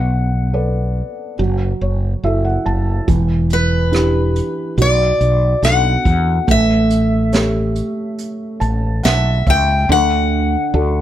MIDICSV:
0, 0, Header, 1, 5, 480
1, 0, Start_track
1, 0, Key_signature, 2, "major"
1, 0, Tempo, 849858
1, 1739, Time_signature, 4, 2, 24, 8
1, 6221, End_track
2, 0, Start_track
2, 0, Title_t, "Steel-string acoustic guitar"
2, 0, Program_c, 0, 25
2, 0, Note_on_c, 0, 78, 82
2, 1484, Note_off_c, 0, 78, 0
2, 1994, Note_on_c, 0, 71, 75
2, 2720, Note_on_c, 0, 74, 85
2, 2727, Note_off_c, 0, 71, 0
2, 3187, Note_off_c, 0, 74, 0
2, 3189, Note_on_c, 0, 78, 96
2, 3675, Note_off_c, 0, 78, 0
2, 3678, Note_on_c, 0, 76, 90
2, 5093, Note_off_c, 0, 76, 0
2, 5111, Note_on_c, 0, 76, 95
2, 5358, Note_off_c, 0, 76, 0
2, 5365, Note_on_c, 0, 79, 98
2, 5581, Note_off_c, 0, 79, 0
2, 5601, Note_on_c, 0, 78, 109
2, 6221, Note_off_c, 0, 78, 0
2, 6221, End_track
3, 0, Start_track
3, 0, Title_t, "Felt piano"
3, 0, Program_c, 1, 0
3, 0, Control_c, 1, 64, 127
3, 0, Note_on_c, 1, 59, 58
3, 302, Note_on_c, 1, 69, 44
3, 304, Note_on_c, 1, 71, 39
3, 307, Note_on_c, 1, 74, 48
3, 760, Note_off_c, 1, 59, 0
3, 768, Note_off_c, 1, 69, 0
3, 769, Note_off_c, 1, 71, 0
3, 770, Note_off_c, 1, 74, 0
3, 784, Note_on_c, 1, 54, 59
3, 791, Control_c, 1, 64, 0
3, 878, Control_c, 1, 64, 127
3, 1027, Note_on_c, 1, 73, 54
3, 1247, Note_off_c, 1, 73, 0
3, 1265, Note_on_c, 1, 66, 39
3, 1266, Note_on_c, 1, 64, 44
3, 1267, Note_on_c, 1, 76, 64
3, 1270, Note_on_c, 1, 69, 47
3, 1376, Note_off_c, 1, 76, 0
3, 1382, Note_on_c, 1, 78, 59
3, 1492, Note_off_c, 1, 78, 0
3, 1501, Note_on_c, 1, 81, 62
3, 1716, Note_off_c, 1, 54, 0
3, 1722, Note_off_c, 1, 81, 0
3, 1727, Note_off_c, 1, 64, 0
3, 1727, Note_off_c, 1, 66, 0
3, 1729, Note_off_c, 1, 69, 0
3, 1738, Note_on_c, 1, 52, 63
3, 1746, Control_c, 1, 64, 0
3, 1841, Control_c, 1, 64, 127
3, 2210, Note_on_c, 1, 62, 45
3, 2215, Note_on_c, 1, 64, 41
3, 2217, Note_on_c, 1, 67, 52
3, 2675, Note_off_c, 1, 52, 0
3, 2680, Note_off_c, 1, 62, 0
3, 2682, Note_off_c, 1, 64, 0
3, 2683, Note_off_c, 1, 67, 0
3, 2699, Note_on_c, 1, 47, 61
3, 2705, Control_c, 1, 64, 0
3, 2820, Control_c, 1, 64, 127
3, 3175, Note_on_c, 1, 59, 45
3, 3177, Note_on_c, 1, 62, 39
3, 3180, Note_on_c, 1, 69, 52
3, 3637, Note_off_c, 1, 47, 0
3, 3643, Note_off_c, 1, 59, 0
3, 3644, Note_off_c, 1, 62, 0
3, 3645, Note_off_c, 1, 69, 0
3, 3657, Note_on_c, 1, 57, 61
3, 3664, Control_c, 1, 64, 0
3, 3763, Control_c, 1, 64, 127
3, 4136, Note_on_c, 1, 67, 45
3, 4138, Note_on_c, 1, 73, 55
3, 4139, Note_on_c, 1, 69, 46
3, 4859, Note_on_c, 1, 81, 64
3, 5086, Note_off_c, 1, 81, 0
3, 5102, Note_on_c, 1, 78, 68
3, 5329, Note_off_c, 1, 78, 0
3, 5349, Note_on_c, 1, 76, 62
3, 5564, Note_off_c, 1, 67, 0
3, 5565, Note_off_c, 1, 57, 0
3, 5565, Note_off_c, 1, 69, 0
3, 5565, Note_off_c, 1, 73, 0
3, 5572, Note_off_c, 1, 76, 0
3, 5588, Note_on_c, 1, 50, 68
3, 5596, Control_c, 1, 64, 0
3, 5684, Control_c, 1, 64, 127
3, 6064, Note_on_c, 1, 62, 51
3, 6065, Note_on_c, 1, 66, 49
3, 6067, Note_on_c, 1, 69, 57
3, 6221, Note_off_c, 1, 50, 0
3, 6221, Note_off_c, 1, 62, 0
3, 6221, Note_off_c, 1, 66, 0
3, 6221, Note_off_c, 1, 69, 0
3, 6221, End_track
4, 0, Start_track
4, 0, Title_t, "Fretless electric bass"
4, 0, Program_c, 2, 35
4, 0, Note_on_c, 2, 35, 91
4, 570, Note_off_c, 2, 35, 0
4, 786, Note_on_c, 2, 30, 94
4, 971, Note_off_c, 2, 30, 0
4, 1024, Note_on_c, 2, 30, 83
4, 1209, Note_off_c, 2, 30, 0
4, 1262, Note_on_c, 2, 30, 79
4, 1448, Note_off_c, 2, 30, 0
4, 1503, Note_on_c, 2, 30, 90
4, 1687, Note_off_c, 2, 30, 0
4, 1739, Note_on_c, 2, 28, 93
4, 2484, Note_off_c, 2, 28, 0
4, 2697, Note_on_c, 2, 35, 98
4, 2884, Note_off_c, 2, 35, 0
4, 2940, Note_on_c, 2, 35, 81
4, 3126, Note_off_c, 2, 35, 0
4, 3177, Note_on_c, 2, 35, 84
4, 3364, Note_off_c, 2, 35, 0
4, 3418, Note_on_c, 2, 40, 95
4, 3605, Note_off_c, 2, 40, 0
4, 3661, Note_on_c, 2, 33, 98
4, 4408, Note_off_c, 2, 33, 0
4, 4864, Note_on_c, 2, 33, 77
4, 5084, Note_off_c, 2, 33, 0
4, 5110, Note_on_c, 2, 35, 81
4, 5327, Note_off_c, 2, 35, 0
4, 5346, Note_on_c, 2, 37, 82
4, 5565, Note_off_c, 2, 37, 0
4, 5586, Note_on_c, 2, 38, 103
4, 5960, Note_off_c, 2, 38, 0
4, 6064, Note_on_c, 2, 38, 82
4, 6221, Note_off_c, 2, 38, 0
4, 6221, End_track
5, 0, Start_track
5, 0, Title_t, "Drums"
5, 1739, Note_on_c, 9, 36, 81
5, 1739, Note_on_c, 9, 42, 58
5, 1796, Note_off_c, 9, 36, 0
5, 1796, Note_off_c, 9, 42, 0
5, 1976, Note_on_c, 9, 42, 49
5, 2033, Note_off_c, 9, 42, 0
5, 2219, Note_on_c, 9, 42, 59
5, 2229, Note_on_c, 9, 37, 84
5, 2275, Note_off_c, 9, 42, 0
5, 2285, Note_off_c, 9, 37, 0
5, 2461, Note_on_c, 9, 42, 48
5, 2518, Note_off_c, 9, 42, 0
5, 2700, Note_on_c, 9, 42, 57
5, 2756, Note_off_c, 9, 42, 0
5, 2940, Note_on_c, 9, 42, 46
5, 2997, Note_off_c, 9, 42, 0
5, 3181, Note_on_c, 9, 42, 65
5, 3191, Note_on_c, 9, 37, 82
5, 3237, Note_off_c, 9, 42, 0
5, 3248, Note_off_c, 9, 37, 0
5, 3420, Note_on_c, 9, 36, 67
5, 3422, Note_on_c, 9, 42, 51
5, 3477, Note_off_c, 9, 36, 0
5, 3478, Note_off_c, 9, 42, 0
5, 3660, Note_on_c, 9, 36, 86
5, 3661, Note_on_c, 9, 42, 67
5, 3717, Note_off_c, 9, 36, 0
5, 3717, Note_off_c, 9, 42, 0
5, 3899, Note_on_c, 9, 42, 58
5, 3955, Note_off_c, 9, 42, 0
5, 4137, Note_on_c, 9, 42, 65
5, 4148, Note_on_c, 9, 38, 83
5, 4194, Note_off_c, 9, 42, 0
5, 4204, Note_off_c, 9, 38, 0
5, 4380, Note_on_c, 9, 42, 52
5, 4436, Note_off_c, 9, 42, 0
5, 4623, Note_on_c, 9, 42, 61
5, 4679, Note_off_c, 9, 42, 0
5, 4863, Note_on_c, 9, 42, 47
5, 4920, Note_off_c, 9, 42, 0
5, 5103, Note_on_c, 9, 42, 64
5, 5113, Note_on_c, 9, 38, 88
5, 5159, Note_off_c, 9, 42, 0
5, 5169, Note_off_c, 9, 38, 0
5, 5347, Note_on_c, 9, 36, 72
5, 5347, Note_on_c, 9, 42, 46
5, 5403, Note_off_c, 9, 36, 0
5, 5403, Note_off_c, 9, 42, 0
5, 6221, End_track
0, 0, End_of_file